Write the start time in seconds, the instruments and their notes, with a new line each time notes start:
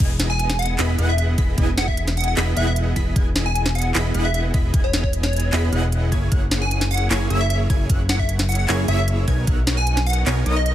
0.00 analog synth bass E1, supersaw synth B3 E4 G#4 D#5 G#5, synth pluck G#6, kick
0.20 snare, closed hi-hat
0.30 digital synth lead G#5
0.39 closed hi-hat
0.50 snare, closed hi-hat
0.59 digital synth lead F#5, closed hi-hat
0.62 closed hi-hat
0.66 closed hi-hat
0.79 analog synth bass E1, supersaw synth B3 E4 G#4 D#5 B5, synth pluck B6, clap, closed hi-hat
0.98 analog synth bass E1, supersaw synth B3 E4 G#4 D#5 F#5, synth pluck F#6, closed hi-hat
1.09 digital synth lead E5
1.18 digital synth lead E5, closed hi-hat
1.38 analog synth bass E1, supersaw synth B3 E4 G#4 D#5 B5, synth pluck B6, kick, closed hi-hat
1.58 analog synth bass E1, supersaw synth B3 E4 G#4 D#5 G#5, synth pluck G#6, kick, closed hi-hat
1.78 digital synth lead F#5, snare, closed hi-hat
1.88 digital synth lead E5, kick
1.97 closed hi-hat
2.08 snare, closed hi-hat
2.17 digital synth lead F#5, closed hi-hat
2.20 closed hi-hat
2.24 closed hi-hat
2.28 digital synth lead F#5
2.37 analog synth bass E1, supersaw synth B3 E4 G#4 D#5 B5, synth pluck B6, clap, closed hi-hat
2.56 analog synth bass E1, supersaw synth B3 E4 G#4 D#5 F#5, digital synth lead E5, synth pluck F#6, closed hi-hat
2.67 digital synth lead E5
2.76 closed hi-hat
2.96 analog synth bass E1, supersaw synth B3 E4 G#4 D#5 B5, synth pluck B6, kick, closed hi-hat
3.16 analog synth bass E1, supersaw synth B3 E4 G#4 D#5 G#5, synth pluck G#6, kick, closed hi-hat
3.36 snare, closed hi-hat
3.46 digital synth lead G#5
3.55 closed hi-hat
3.66 snare, closed hi-hat
3.75 digital synth lead F#5, closed hi-hat
3.78 closed hi-hat
3.82 closed hi-hat
3.95 analog synth bass E1, supersaw synth B3 E4 G#4 D#5 B5, synth pluck B6, clap, closed hi-hat
4.14 analog synth bass E1, supersaw synth B3 E4 G#4 D#5 F#5, synth pluck F#6, closed hi-hat
4.25 digital synth lead E5
4.34 digital synth lead E5, closed hi-hat
4.54 analog synth bass E1, supersaw synth B3 E4 G#4 D#5 B5, synth pluck B6, kick, closed hi-hat
4.74 analog synth bass E1, supersaw synth B3 E4 G#4 D#5 G#5, synth pluck G#6, kick, closed hi-hat
4.84 digital synth lead C#5
4.93 digital synth lead C#5, snare, closed hi-hat
5.03 digital synth lead C#5, kick
5.13 closed hi-hat
5.23 digital synth lead C#5, snare, closed hi-hat
5.33 closed hi-hat
5.36 closed hi-hat
5.40 closed hi-hat
5.53 analog synth bass E1, supersaw synth B3 E4 G#4 D#5 B5, synth pluck B6, clap, closed hi-hat
5.72 analog synth bass E1, supersaw synth B3 E4 G#4 D#5 F#5, synth pluck F#6, closed hi-hat
5.92 closed hi-hat
6.12 analog synth bass F#1, supersaw synth A#3 E4 G#4 C#5 G#5, synth pluck G#6, kick, closed hi-hat
6.32 analog synth bass F#1, supersaw synth A#3 E4 G#4 C#5 F#5, synth pluck F#6, kick, closed hi-hat
6.51 snare, closed hi-hat
6.62 digital synth lead G#5
6.71 closed hi-hat
6.81 snare, closed hi-hat
6.91 digital synth lead F#5, closed hi-hat, open hi-hat
6.97 closed hi-hat
7.11 analog synth bass F#1, supersaw synth A#3 E4 G#4 C#5 G#5, synth pluck G#6, clap, closed hi-hat
7.30 analog synth bass F#1, supersaw synth A#3 E4 G#4 C#5 E5, synth pluck E6, closed hi-hat
7.41 digital synth lead E5
7.50 digital synth lead E5, closed hi-hat
7.70 analog synth bass F#1, supersaw synth A#3 E4 G#4 C#5 G#5, synth pluck G#6, kick, closed hi-hat
7.90 analog synth bass F#1, supersaw synth A#3 E4 G#4 C#5 F#5, synth pluck F#6, kick, closed hi-hat
8.09 digital synth lead F#5, snare, closed hi-hat
8.19 digital synth lead E5, kick
8.29 closed hi-hat
8.39 snare, closed hi-hat
8.49 digital synth lead F#5, closed hi-hat, open hi-hat
8.55 digital synth lead F#5, closed hi-hat
8.68 analog synth bass F#1, supersaw synth A#3 E4 G#4 C#5 G#5, synth pluck G#6, clap, closed hi-hat
8.88 analog synth bass F#1, supersaw synth A#3 E4 G#4 C#5 E5, digital synth lead E5, synth pluck E6, closed hi-hat
8.99 digital synth lead E5
9.08 closed hi-hat
9.28 analog synth bass B1, supersaw synth B3 D#4 A#4 C#5 G#5, synth pluck G#6, kick, closed hi-hat
9.47 analog synth bass B1, supersaw synth B3 D#4 A#4 C#5 F#5, synth pluck F#6, kick, closed hi-hat
9.67 snare, closed hi-hat
9.77 digital synth lead G#5
9.87 closed hi-hat
9.97 snare, closed hi-hat
10.06 digital synth lead F#5, closed hi-hat, open hi-hat
10.13 closed hi-hat
10.26 analog synth bass B1, supersaw synth B3 D#4 A#4 C#5 G#5, synth pluck G#6, clap, closed hi-hat
10.46 analog synth bass B1, supersaw synth B3 D#4 A#4 C#5 D#5, synth pluck D#6, closed hi-hat
10.56 digital synth lead D#5
10.66 digital synth lead D#5, closed hi-hat